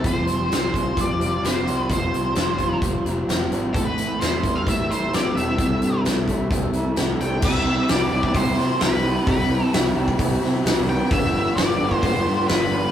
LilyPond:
<<
  \new Staff \with { instrumentName = "Lead electric guitar" } { \time 4/4 \key c \major \tempo 4 = 130 c''4 c''4 d''4 c''4 | c''2 r2 | a'16 b'8. c''8. f''16 e''8 c''8 d''8 e''8~ | e''4 r2 r8 g''8 |
e''4 d''4 c''4 b'4 | b'4 r2 r8 g''8 | e''4 d''4 c''4 b'4 | }
  \new Staff \with { instrumentName = "Analog synth pad" } { \time 4/4 \key c \major << { f''1~ | f''1 | e''1 | e''1 |
b''1~ | b''1 | b''1 | } \\ { <g c' f' c''>1~ | <g c' f' c''>1 | <g c' e' a'>1~ | <g c' e' a'>1 |
<c' e' g''>1~ | <c' e' g''>1 | <f' d'' g''>1 | } >> }
  \new Staff \with { instrumentName = "Clean electric guitar" } { \clef bass \time 4/4 \key c \major f4 g8 f8 g8 f'8 c'8 g8 | f4 g8 f8 g8 f'8 c'8 g8 | a,4 g8 e8 g8 e'8 c'8 g8 | c4 g8 c8 g8 e'8 a8 g8 |
<c g e'>4 <c g e'>8 <g e'>8 <c g e'>4 <c g e'>8 <g e'>8 | <c g e'>4 <c g e'>8 <g e'>8 <c g e'>4 <c g e'>8 <g b e'>8 | <g, d f b d'>4 <d f b d'>8 <f b d'>8 <g, d f b d'>4 <d f b d'>8 <f b d'>8 | }
  \new Staff \with { instrumentName = "Overdriven electric guitar" } { \clef bass \time 4/4 \key c \major f8 g8 f8 g8 f8 g8 g'8 c'8 | f8 g8 f8 g8 f8 g8 g'8 c'8 | a,8 e8 e8 g8 e8 g8 g'8 c'8 | c8 e8 e8 a8 e8 a8 g'8 e'8 |
<c e g c' g'>4 <e g c' g'>8 <g c' g'>4 <g c' g'>8 <c e g c' g'>4 | <c e g c' g'>4 <e g c' g'>8 <g c' g'>4 <g c' g'>8 <c e g c' g'>4 | <g, d f g b g'>4 <f g b g'>8 <f g b g'>4 <f g b g'>8 <g, d f g b g'>4 | }
  \new Staff \with { instrumentName = "Fingered electric bass" } { \clef bass \time 4/4 \key c \major f,,4 c,4 f,8 f,,8 f,,8 c,8 | f,,8 c,8 f,,4 f,,8 f,,8 f,,8 aes,,8 | a,,4 e,4 a,8 a,,8 a,,8 e,,8 | c,8 g,8 c,4 c,8 c,8 c,8 c,8 |
c,4 c,8 c,8 c,8 c8 c,4 | c,4 c,8 c,8 c,8 c8 c,4 | g,,4 g,,8 g,,8 g,,8 g,8 g,,4 | }
  \new DrumStaff \with { instrumentName = "Drums" } \drummode { \time 4/4 <hh bd>8 hh8 <hh sn>8 <hh bd>8 <hh bd>8 hh8 <hh sn>8 hh8 | <hh bd>8 hh8 <hh sn>8 <hh bd>8 <hh bd>8 hh8 <hh sn>8 hh8 | <hh bd>8 hh8 <hh sn>8 <hh bd>8 <hh bd>8 hh8 <hh sn>8 hh8 | <hh bd>8 hh8 <hh sn>8 <hh bd>8 <hh bd>8 hh8 <hh sn>8 hh8 |
<cymc bd>4 <hho sn>8. bd16 <hho bd>8 sn8 <hho sn>4 | <hho bd>4 <hho sn>8. bd16 <hho bd>8 sn8 <hho sn>4 | <hho bd>4 <hho sn>8. bd16 <hho bd>4 <hho sn>4 | }
>>